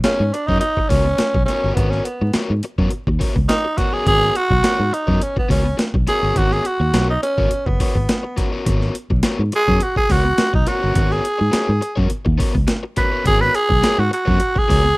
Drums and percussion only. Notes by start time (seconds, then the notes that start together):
0.04 snare, closed hi-hat
0.34 closed hi-hat
0.48 kick
0.61 closed hi-hat
0.77 kick
0.90 kick, open hi-hat
1.18 snare, closed hi-hat
1.35 kick
1.48 snare, closed hi-hat
1.77 kick, closed hi-hat
1.92 snare
2.05 closed hi-hat
2.33 snare, closed hi-hat
2.63 closed hi-hat
2.78 kick
2.91 closed hi-hat
3.07 kick
3.21 kick, open hi-hat
3.36 kick
3.49 snare, closed hi-hat
3.78 kick, snare, closed hi-hat
4.07 kick, closed hi-hat
4.22 snare
4.35 closed hi-hat
4.51 kick
4.64 snare, closed hi-hat
4.94 closed hi-hat
5.08 kick
5.22 closed hi-hat
5.37 kick
5.50 kick, open hi-hat
5.79 snare, closed hi-hat
5.94 kick
6.07 snare, closed hi-hat
6.36 kick, closed hi-hat
6.51 snare
6.65 closed hi-hat
6.94 snare, closed hi-hat
7.23 closed hi-hat
7.38 kick
7.51 closed hi-hat
7.66 kick
7.80 kick, open hi-hat
7.95 kick
8.09 snare, closed hi-hat
8.38 kick, snare, closed hi-hat
8.66 kick, closed hi-hat
8.81 snare
8.95 closed hi-hat
9.10 kick
9.23 snare, closed hi-hat
9.52 closed hi-hat
9.68 kick
9.80 closed hi-hat
9.96 kick
10.10 kick, open hi-hat
10.38 snare, closed hi-hat
10.54 kick
10.67 snare, closed hi-hat
10.95 kick, closed hi-hat
11.11 snare
11.25 closed hi-hat
11.53 snare, closed hi-hat
11.82 closed hi-hat
11.97 kick
12.10 closed hi-hat
12.26 kick
12.40 kick, open hi-hat
12.55 kick
12.68 snare, closed hi-hat
12.96 kick, snare, closed hi-hat
13.26 kick, closed hi-hat
13.41 snare
13.55 closed hi-hat
13.70 kick
13.84 snare, closed hi-hat
14.13 closed hi-hat
14.28 kick
14.40 closed hi-hat
14.56 kick
14.70 kick, open hi-hat